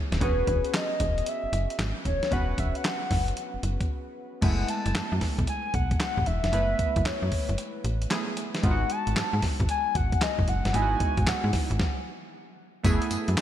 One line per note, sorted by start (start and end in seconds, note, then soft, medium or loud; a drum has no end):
0.00 0.17 A3 medium
0.00 0.17 B3 medium
0.00 0.18 E4 medium
0.00 0.18 G#4 medium
0.12 0.20 D#1 medium
0.12 snare medium
0.12 closed hi-hat medium
0.20 0.43 E1 loud
0.20 2.27 B3 medium
0.20 2.28 C#4 medium
0.20 2.28 F#4 medium
0.20 2.29 G#4 medium
0.20 0.77 B4 loud
0.20 kick loud
0.20 closed hi-hat medium
0.47 0.62 E1 loud
0.47 kick medium
0.47 closed hi-hat medium
0.65 closed hi-hat soft
0.74 1.30 D#5 loud
0.74 snare loud
0.74 clap medium
0.74 closed hi-hat medium
1.00 1.22 E1 medium
1.00 kick medium
1.00 closed hi-hat medium
1.18 closed hi-hat soft
1.26 1.80 E5 loud
1.26 closed hi-hat medium
1.44 1.47 F#1 soft
1.53 1.67 F#1 medium
1.53 closed hi-hat medium
1.70 closed hi-hat medium
1.79 1.94 G#1 medium
1.79 snare loud
1.79 clap medium
1.79 closed hi-hat medium
2.05 2.20 D#1 medium
2.05 2.34 C#5 loud
2.05 kick medium
2.05 closed hi-hat medium
2.23 snare medium
2.23 closed hi-hat soft
2.31 2.54 E1 medium
2.31 4.38 B3 medium
2.31 4.38 C#4 medium
2.31 4.39 F#4 medium
2.31 4.39 B4 medium
2.31 2.61 F#5 loud
2.31 kick loud
2.31 closed hi-hat medium
2.58 2.73 E1 medium
2.58 2.78 E5 loud
2.58 kick medium
2.58 closed hi-hat medium
2.75 3.55 F#5 loud
2.75 closed hi-hat soft
2.84 snare loud
2.84 clap medium
2.84 closed hi-hat medium
3.11 3.33 F#1 medium
3.11 kick medium
3.11 snare medium
3.11 open hi-hat medium
3.28 closed hi-hat soft
3.37 closed hi-hat medium
3.54 3.58 F#1 soft
3.63 3.78 F#1 medium
3.63 closed hi-hat medium
3.81 kick medium
3.81 closed hi-hat medium
4.41 4.65 F#1 loud
4.41 6.50 G#3 medium
4.41 6.48 A3 medium
4.41 6.49 B3 medium
4.41 6.49 E4 medium
4.41 4.71 F#5 loud
4.41 kick loud
4.41 closed hi-hat medium
4.41 crash medium
4.68 5.22 A5 loud
4.68 closed hi-hat medium
4.86 4.94 F#1 medium
4.86 closed hi-hat soft
4.95 snare loud
4.95 clap medium
4.95 closed hi-hat medium
5.12 5.20 F#2 loud
5.21 kick medium
5.21 snare medium
5.21 open hi-hat medium
5.39 5.46 B1 loud
5.39 kick medium
5.39 closed hi-hat soft
5.47 5.76 G#5 loud
5.47 closed hi-hat medium
5.74 5.96 B1 medium
5.74 6.00 F#5 loud
5.74 kick medium
5.74 closed hi-hat medium
5.91 kick medium
5.91 closed hi-hat medium
6.00 6.28 F#5 loud
6.00 snare loud
6.00 clap medium
6.00 closed hi-hat medium
6.17 6.25 A1 loud
6.17 kick loud
6.26 6.41 E1 medium
6.26 6.52 E5 loud
6.26 closed hi-hat medium
6.44 6.51 F1 medium
6.44 snare medium
6.44 closed hi-hat medium
6.52 6.75 F#1 loud
6.52 8.07 A3 medium
6.52 8.07 B3 medium
6.52 8.08 E4 medium
6.52 8.08 B4 medium
6.52 7.07 E5 loud
6.52 closed hi-hat medium
6.79 kick medium
6.79 closed hi-hat medium
6.96 7.04 F#1 loud
6.96 kick medium
6.96 closed hi-hat soft
7.05 7.12 F#2 medium
7.05 7.58 C#5 medium
7.05 snare loud
7.05 clap loud
7.05 closed hi-hat medium
7.22 7.30 F#2 loud
7.32 kick medium
7.32 open hi-hat medium
7.49 7.57 F#1 loud
7.49 closed hi-hat soft
7.58 closed hi-hat medium
7.84 8.07 A1 medium
7.84 closed hi-hat medium
8.02 closed hi-hat medium
8.10 8.63 A3 medium
8.10 8.62 B3 soft
8.10 8.64 E4 soft
8.10 8.64 G#4 medium
8.10 snare loud
8.10 clap medium
8.10 closed hi-hat medium
8.37 closed hi-hat medium
8.55 snare medium
8.55 closed hi-hat medium
8.62 8.86 G#1 loud
8.62 10.69 G#3 medium
8.62 10.70 B3 medium
8.62 10.70 D#4 medium
8.62 8.72 F4 medium
8.62 8.92 F#5 loud
8.62 kick loud
8.62 closed hi-hat medium
8.71 10.74 F#4 medium
8.90 9.43 A5 loud
8.90 closed hi-hat medium
9.07 9.15 G#1 medium
9.07 closed hi-hat soft
9.16 snare loud
9.16 clap loud
9.16 closed hi-hat medium
9.33 9.41 G#2 loud
9.42 kick medium
9.42 snare medium
9.42 open hi-hat medium
9.60 9.67 G#1 loud
9.60 kick medium
9.60 closed hi-hat soft
9.69 9.98 G#5 loud
9.69 closed hi-hat medium
9.95 10.17 G#1 medium
9.95 10.24 F#5 loud
9.95 kick medium
9.95 closed hi-hat medium
10.12 kick loud
10.12 closed hi-hat medium
10.21 10.50 D#5 loud
10.21 snare loud
10.21 clap medium
10.21 closed hi-hat medium
10.39 10.46 F#1 medium
10.39 kick loud
10.48 10.62 F#1 medium
10.48 10.75 F#5 loud
10.48 closed hi-hat medium
10.65 10.73 G1 medium
10.65 snare medium
10.65 closed hi-hat medium
10.73 10.96 G#1 loud
10.73 11.77 G#3 medium
10.73 11.77 B3 medium
10.73 11.77 D#4 medium
10.73 10.83 E4 medium
10.73 11.30 G#5 loud
10.73 closed hi-hat medium
10.82 11.81 F#4 medium
11.00 kick medium
11.00 closed hi-hat medium
11.17 11.25 G#1 loud
11.17 kick medium
11.17 closed hi-hat soft
11.27 11.80 F#5 medium
11.27 snare loud
11.27 clap loud
11.27 closed hi-hat medium
11.44 11.52 G#2 loud
11.53 kick medium
11.53 snare medium
11.53 open hi-hat medium
11.70 11.78 G#1 loud
11.70 closed hi-hat soft
11.79 kick loud
11.79 snare medium
12.83 12.99 F#1 loud
12.83 13.41 A3 medium
12.83 13.41 B3 medium
12.83 13.41 E4 medium
12.83 13.41 G#4 medium
12.83 kick loud
12.83 closed hi-hat medium
12.83 tambourine medium
13.02 closed hi-hat medium
13.11 13.18 F#2 soft
13.11 closed hi-hat medium
13.11 tambourine medium
13.28 13.36 F#2 medium
13.28 closed hi-hat medium
13.37 13.41 D#5 loud
13.37 snare loud
13.37 clap medium
13.37 closed hi-hat medium
13.37 tambourine medium